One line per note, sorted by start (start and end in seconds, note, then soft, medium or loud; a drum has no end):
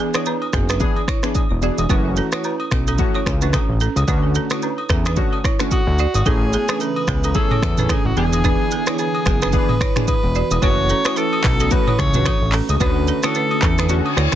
0.00 0.10 E3 medium
0.00 0.11 B3 medium
0.00 0.09 B3 medium
0.00 0.11 D4 medium
0.00 0.11 G#4 medium
0.14 0.33 E3 medium
0.14 0.33 B3 medium
0.14 0.33 D4 medium
0.14 0.22 E4 medium
0.14 0.33 G#4 medium
0.14 0.21 C#5 medium
0.14 finger snap medium
0.14 cross-stick loud
0.14 high agogo medium
0.14 shaker medium
0.26 0.36 D4 medium
0.26 0.35 B4 medium
0.26 low woodblock medium
0.26 shaker medium
0.42 high agogo medium
0.53 0.84 F#1 medium
0.53 0.63 B3 medium
0.53 0.63 G#4 medium
0.53 finger snap medium
0.53 kick medium
0.53 cross-stick loud
0.53 shaker medium
0.69 0.76 D4 medium
0.69 0.76 B4 medium
0.69 finger snap medium
0.69 cross-stick medium
0.69 high agogo medium
0.69 shaker medium
0.80 1.01 E3 medium
0.80 1.01 B3 medium
0.80 1.01 D4 medium
0.80 1.02 G#4 loud
0.80 kick medium
0.80 shaker medium
0.96 high agogo medium
1.08 1.18 E4 medium
1.08 1.17 C#5 medium
1.08 finger snap medium
1.08 kick medium
1.08 cross-stick medium
1.08 shaker medium
1.23 1.42 E3 medium
1.23 1.42 B3 medium
1.23 1.42 D4 medium
1.23 1.42 G#4 medium
1.23 finger snap medium
1.23 cross-stick medium
1.23 shaker medium
1.35 kick medium
1.35 high agogo medium
1.35 shaker medium
1.51 1.70 E1 medium
1.62 1.83 E3 medium
1.62 1.83 B3 medium
1.62 1.83 D4 medium
1.62 1.72 F#4 medium
1.62 1.83 G#4 medium
1.62 1.72 D5 medium
1.62 shaker soft
1.78 1.86 E1 medium
1.78 high agogo medium
1.78 shaker medium
1.89 2.20 F#1 loud
1.89 2.29 E3 medium
1.89 2.29 A3 medium
1.89 2.29 C#4 medium
1.89 2.00 E4 medium
1.89 2.29 F#4 loud
1.89 1.99 B4 medium
1.89 kick loud
1.89 high agogo medium
1.89 shaker medium
2.16 2.27 C#4 medium
2.16 2.26 A4 medium
2.16 shaker medium
2.32 2.51 E3 medium
2.32 2.51 A3 medium
2.32 2.51 C#4 medium
2.32 2.40 E4 medium
2.32 2.51 F#4 medium
2.32 2.40 C#5 medium
2.32 finger snap medium
2.32 cross-stick loud
2.32 high agogo medium
2.32 shaker medium
2.44 2.54 E4 medium
2.44 2.54 B4 medium
2.44 low woodblock medium
2.44 shaker medium
2.60 high agogo medium
2.71 3.02 B1 medium
2.71 2.81 C#4 medium
2.71 2.81 A4 medium
2.71 finger snap medium
2.71 kick medium
2.71 cross-stick medium
2.71 shaker medium
2.87 2.95 C#4 medium
2.87 2.94 A4 medium
2.87 high agogo medium
2.87 shaker medium
2.98 3.20 E3 medium
2.98 3.20 A3 medium
2.98 3.20 C#4 medium
2.98 3.20 F#4 loud
2.98 kick medium
2.98 shaker medium
3.14 3.22 E4 medium
3.14 3.22 C#5 medium
3.14 high agogo medium
3.26 3.57 C#2 medium
3.26 finger snap medium
3.26 kick medium
3.26 cross-stick medium
3.26 shaker soft
3.41 3.60 E3 medium
3.41 3.60 A3 medium
3.41 3.60 C#4 medium
3.41 3.49 D4 medium
3.41 3.60 F#4 medium
3.41 3.49 B4 medium
3.41 shaker medium
3.53 3.63 C#4 medium
3.53 3.63 A4 medium
3.53 finger snap medium
3.53 kick medium
3.53 cross-stick loud
3.53 high agogo medium
3.53 shaker medium
3.69 3.88 A1 medium
3.80 3.91 C#4 medium
3.80 3.90 A4 medium
3.80 shaker soft
3.96 4.04 C#2 medium
3.96 high agogo medium
3.96 shaker medium
4.08 4.39 D2 loud
4.08 4.47 D3 medium
4.08 4.47 A3 medium
4.08 4.47 C#4 medium
4.08 4.18 D4 medium
4.08 4.47 F#4 medium
4.08 4.17 B4 medium
4.08 kick loud
4.08 high agogo medium
4.08 shaker medium
4.35 4.45 C#4 medium
4.35 4.45 A4 medium
4.35 shaker medium
4.50 4.69 D3 medium
4.50 4.69 A3 medium
4.50 4.69 C#4 medium
4.50 4.58 E4 medium
4.50 4.69 F#4 medium
4.50 4.58 C#5 medium
4.50 finger snap medium
4.50 cross-stick loud
4.50 high agogo medium
4.50 shaker medium
4.62 4.72 D4 medium
4.62 4.72 B4 medium
4.62 low woodblock medium
4.62 shaker medium
4.78 high agogo medium
4.89 5.20 E2 medium
4.89 5.00 C#4 medium
4.89 4.99 A4 medium
4.89 finger snap medium
4.89 kick medium
4.89 cross-stick loud
4.89 shaker medium
5.05 5.13 D4 medium
5.05 5.12 B4 medium
5.05 finger snap medium
5.05 cross-stick medium
5.05 high agogo medium
5.05 shaker medium
5.16 5.38 D3 medium
5.16 5.38 A3 medium
5.16 5.38 C#4 medium
5.16 5.38 F#4 loud
5.16 kick medium
5.16 shaker medium
5.33 high agogo medium
5.44 5.54 E4 medium
5.44 5.54 C#5 medium
5.44 finger snap medium
5.44 kick medium
5.44 cross-stick medium
5.44 shaker medium
5.59 5.78 D3 medium
5.59 5.78 A3 medium
5.59 5.79 C#4 medium
5.59 5.79 F#4 medium
5.59 finger snap medium
5.59 cross-stick medium
5.59 shaker medium
5.71 6.28 F#4 medium
5.71 kick medium
5.71 high agogo medium
5.71 shaker medium
5.87 6.07 D2 loud
5.98 6.09 F#4 medium
5.98 6.08 D5 medium
5.98 shaker soft
6.14 6.23 G#1 medium
6.14 high agogo medium
6.14 shaker medium
6.25 6.57 A1 loud
6.25 8.15 C#3 medium
6.25 6.65 E3 medium
6.25 10.58 E3 medium
6.25 6.65 A3 medium
6.25 8.15 A3 medium
6.25 6.65 C#4 medium
6.25 6.36 C#4 medium
6.25 10.58 E4 medium
6.25 6.65 G#4 loud
6.25 6.82 G#4 medium
6.25 6.35 A4 medium
6.25 kick loud
6.25 high agogo medium
6.25 shaker medium
6.53 6.63 B3 medium
6.53 6.63 G#4 medium
6.53 shaker medium
6.68 6.87 E3 medium
6.68 6.87 A3 medium
6.68 6.88 C#4 medium
6.68 6.77 D4 medium
6.68 6.88 G#4 medium
6.68 6.76 B4 medium
6.68 finger snap medium
6.68 cross-stick loud
6.68 high agogo medium
6.68 shaker medium
6.80 6.91 C#4 medium
6.80 6.90 A4 medium
6.80 7.35 B4 medium
6.80 shaker medium
6.96 high agogo medium
7.07 7.39 C#2 medium
7.07 7.18 B3 medium
7.07 7.17 G#4 medium
7.07 finger snap medium
7.07 kick medium
7.07 cross-stick loud
7.07 shaker medium
7.24 7.31 C#4 medium
7.24 7.31 A4 medium
7.24 high agogo medium
7.24 shaker medium
7.34 7.56 E3 medium
7.34 7.56 A3 medium
7.34 7.56 C#4 medium
7.34 7.56 G#4 loud
7.34 7.92 A4 medium
7.34 kick medium
7.34 shaker medium
7.50 7.58 E4 medium
7.50 7.58 C#5 medium
7.50 mid tom loud
7.50 high agogo medium
7.62 7.93 E2 medium
7.62 finger snap medium
7.62 kick medium
7.62 cross-stick medium
7.62 shaker medium
7.78 7.97 E3 medium
7.78 7.97 A3 medium
7.78 7.97 C#4 medium
7.78 7.86 D4 medium
7.78 7.97 G#4 medium
7.78 7.85 B4 medium
7.78 mid tom medium
7.78 shaker medium
7.89 8.00 C#4 medium
7.89 8.07 G#4 medium
7.89 7.99 A4 medium
7.89 finger snap medium
7.89 kick medium
7.89 cross-stick loud
7.89 high agogo medium
7.89 shaker medium
8.05 8.13 A1 medium
8.05 8.17 F#4 medium
8.16 8.56 E1 loud
8.16 10.60 D3 medium
8.16 8.42 E3 medium
8.16 8.42 B3 medium
8.16 10.60 B3 medium
8.16 8.27 B3 medium
8.16 8.42 D4 medium
8.16 8.42 G#4 loud
8.16 8.26 G#4 medium
8.16 8.95 G#4 loud
8.16 shaker soft
8.33 high agogo medium
8.33 shaker medium
8.44 8.83 E3 medium
8.44 8.83 B3 medium
8.44 8.83 D4 medium
8.44 8.54 D4 medium
8.44 8.84 G#4 loud
8.44 8.54 B4 loud
8.44 kick loud
8.44 high agogo medium
8.44 shaker medium
8.71 8.81 B3 medium
8.71 8.81 G#4 medium
8.71 shaker medium
8.87 9.06 E3 medium
8.87 9.06 B3 medium
8.87 9.06 D4 medium
8.87 8.95 E4 medium
8.87 9.06 G#4 medium
8.87 8.94 C#5 medium
8.87 finger snap medium
8.87 cross-stick loud
8.87 high agogo medium
8.87 shaker medium
8.98 9.09 D4 medium
8.98 9.55 G#4 loud
8.98 9.08 B4 medium
8.98 shaker medium
9.15 high agogo medium
9.26 9.57 F#1 medium
9.26 9.36 B3 medium
9.26 9.35 G#4 medium
9.26 finger snap medium
9.26 kick medium
9.26 cross-stick loud
9.26 shaker medium
9.42 9.49 D4 medium
9.42 9.49 B4 medium
9.42 finger snap medium
9.42 cross-stick medium
9.42 high agogo medium
9.42 shaker medium
9.52 9.74 E3 medium
9.52 9.74 B3 medium
9.52 9.74 D4 medium
9.52 9.74 G#4 loud
9.52 10.07 B4 loud
9.52 kick medium
9.52 shaker medium
9.69 mid tom loud
9.69 high agogo medium
9.81 9.90 E4 medium
9.81 9.90 C#5 medium
9.81 finger snap medium
9.81 kick medium
9.81 cross-stick medium
9.81 shaker soft
9.96 10.15 E3 medium
9.96 10.15 B3 medium
9.96 10.15 D4 medium
9.96 10.15 G#4 medium
9.96 finger snap medium
9.96 cross-stick medium
9.96 mid tom loud
9.96 shaker medium
10.07 10.64 B4 loud
10.07 kick medium
10.07 high agogo medium
10.07 shaker medium
10.23 10.43 E1 medium
10.35 10.45 F#4 medium
10.35 10.44 D5 medium
10.35 shaker soft
10.51 10.59 E1 medium
10.51 high agogo medium
10.51 shaker medium
10.62 10.93 F#1 loud
10.62 11.01 E3 medium
10.62 12.78 E3 medium
10.62 11.01 A3 medium
10.62 14.35 A3 medium
10.62 12.78 C#4 medium
10.62 11.01 C#4 medium
10.62 10.72 E4 medium
10.62 14.35 F#4 medium
10.62 11.02 F#4 loud
10.62 10.72 B4 medium
10.62 11.19 C#5 loud
10.62 kick loud
10.62 high agogo medium
10.62 shaker medium
10.89 10.99 C#4 medium
10.89 10.99 A4 medium
10.89 shaker medium
11.05 11.24 E3 medium
11.05 11.24 A3 medium
11.05 11.24 C#4 medium
11.05 11.13 E4 medium
11.05 11.24 F#4 medium
11.05 11.12 C#5 medium
11.05 finger snap medium
11.05 cross-stick loud
11.05 high agogo medium
11.05 shaker medium
11.16 11.27 E4 medium
11.16 11.73 A4 loud
11.16 11.26 B4 medium
11.16 shaker medium
11.33 high agogo medium
11.44 11.75 B1 medium
11.44 11.54 C#4 medium
11.44 11.54 A4 medium
11.44 finger snap medium
11.44 kick medium
11.44 cross-stick loud
11.44 clap loud
11.44 open hi-hat medium
11.44 shaker medium
11.60 11.67 C#4 medium
11.60 11.67 A4 medium
11.60 high agogo medium
11.60 shaker medium
11.71 11.92 E3 medium
11.71 11.92 A3 medium
11.71 11.92 C#4 medium
11.71 11.92 F#4 loud
11.71 12.01 B4 loud
11.71 kick medium
11.71 shaker medium
11.87 11.95 E4 medium
11.87 11.94 C#5 medium
11.87 mid tom loud
11.87 high agogo medium
11.99 12.29 C#2 loud
11.99 12.54 C#5 loud
11.99 finger snap medium
11.99 kick medium
11.99 cross-stick medium
11.99 shaker medium
12.14 12.33 E3 medium
12.14 12.33 A3 medium
12.14 12.33 C#4 medium
12.14 12.22 D4 medium
12.14 12.33 F#4 medium
12.14 12.21 B4 medium
12.14 mid tom loud
12.14 shaker medium
12.25 12.36 C#4 medium
12.25 12.35 A4 medium
12.25 finger snap medium
12.25 kick medium
12.25 cross-stick loud
12.25 high agogo medium
12.25 shaker medium
12.42 12.61 A1 medium
12.52 12.63 C#4 medium
12.52 12.63 A4 medium
12.52 clap medium
12.52 open hi-hat medium
12.52 shaker soft
12.69 12.77 C#2 medium
12.69 high agogo medium
12.69 shaker medium
12.80 13.11 D2 loud
12.80 13.20 D3 medium
12.80 14.35 D3 medium
12.80 13.20 A3 medium
12.80 13.20 C#4 medium
12.80 14.35 C#4 medium
12.80 12.90 D4 medium
12.80 13.20 F#4 loud
12.80 12.90 B4 loud
12.80 13.26 B4 loud
12.80 kick loud
12.80 high agogo medium
12.80 shaker medium
13.07 13.18 C#4 medium
13.07 13.17 A4 medium
13.07 shaker medium
13.23 13.42 D3 medium
13.23 13.42 A3 medium
13.23 13.42 C#4 medium
13.23 13.31 E4 medium
13.23 13.42 F#4 medium
13.23 14.06 A4 loud
13.23 13.31 C#5 medium
13.23 finger snap medium
13.23 cross-stick loud
13.23 high agogo medium
13.23 shaker medium
13.35 13.45 D4 medium
13.35 13.44 B4 medium
13.35 shaker medium
13.51 high agogo medium
13.62 14.01 E2 medium
13.62 13.72 C#4 medium
13.62 13.72 A4 medium
13.62 finger snap medium
13.62 kick medium
13.62 cross-stick loud
13.62 clap loud
13.62 shaker medium
13.78 13.86 D4 medium
13.78 13.85 B4 medium
13.78 finger snap medium
13.78 cross-stick medium
13.78 high agogo medium
13.78 shaker medium
13.89 14.10 D3 medium
13.89 14.10 A3 medium
13.89 14.10 C#4 medium
13.89 14.11 F#4 loud
13.89 reverse cymbal medium
13.89 shaker medium
14.06 high agogo medium
14.17 14.28 D2 loud
14.17 14.27 E4 medium
14.17 14.26 C#5 medium
14.17 finger snap medium
14.17 cross-stick medium
14.17 shaker medium
14.32 cross-stick medium
14.32 shaker medium